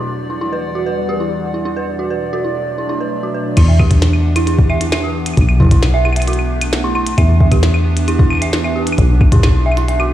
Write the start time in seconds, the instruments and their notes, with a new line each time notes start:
Already playing: ambient pad E2 E3 G3 D5 F#5, synth texture D4 D5
0.30 synth bell E4
0.41 synth bell E4
0.53 synth bell B4
0.75 synth bell F#4
0.86 synth bell B4
1.09 synth bell G4
1.20 synth bell E4
1.54 synth bell E4
1.65 synth bell E4
1.77 ambient pad B2 F#3 A3 D4 D5, synth bell B4
1.99 synth bell F#4
2.10 synth bell B4
2.33 synth bell F#4
2.44 synth bell E4
2.78 synth bell E4
2.89 synth bell E4
3.00 synth bell B4
3.23 synth bell F#4
3.34 synth bell B4
3.57 acid bass E2, ambient pad E3 B3 D4 G4 F#5, synth bell E4, kick, closed hi-hat, crash, claves
3.68 synth bell E5
3.79 synth bell G4, kick, claves
3.91 kick, closed hi-hat
4.02 snare, closed hi-hat
4.13 claves
4.36 synth bell E4, closed hi-hat, claves
4.47 synth bell E4, closed hi-hat
4.59 kick
4.70 synth bell E5, claves
4.81 synth bell E4, closed hi-hat
4.92 synth bell E5, snare, closed hi-hat, claves
5.04 synth bell G4
5.26 closed hi-hat, claves
5.34 acid bass B1, ambient pad A3 D4, kick, closed hi-hat, claves
5.41 claves
5.49 claves
5.60 synth bell E4, kick
5.62 kick
5.65 kick
5.67 kick
5.69 synth bell E4, kick, closed hi-hat
5.71 kick
5.83 snare, closed hi-hat, claves
5.94 synth bell E5
6.05 synth bell E4, claves
6.13 synth bell E5, closed hi-hat, claves
6.20 closed hi-hat, claves
6.28 synth bell F#4, closed hi-hat
6.33 closed hi-hat
6.39 claves
6.61 closed hi-hat, claves
6.73 snare, closed hi-hat
6.84 synth bell E4
6.95 synth bell E4, claves
7.07 closed hi-hat
7.18 acid bass E2, ambient pad E3 G4 F#5, synth bell E5, kick, closed hi-hat, claves
7.29 synth bell E4
7.40 synth bell E5, kick
7.51 synth bell G4, kick, closed hi-hat, claves
7.63 snare, closed hi-hat
7.74 claves
7.97 closed hi-hat
8.08 synth bell E4, closed hi-hat, claves
8.19 synth bell E4, kick
8.30 claves
8.33 claves
8.35 claves
8.37 claves
8.42 synth bell E5, closed hi-hat
8.53 synth bell E4, snare, closed hi-hat
8.64 synth bell E5, claves
8.76 synth bell G4
8.87 closed hi-hat
8.92 claves
8.98 acid bass B1, ambient pad A3, kick, closed hi-hat
9.21 kick, claves
9.32 synth bell E4, kick, closed hi-hat
9.36 kick
9.40 synth bell E4, kick, snare, closed hi-hat, claves
9.43 kick
9.47 kick
9.51 kick
9.66 synth bell E5
9.72 claves
9.77 synth bell E4, closed hi-hat
9.88 synth bell E5, closed hi-hat
10.00 synth bell F#4, claves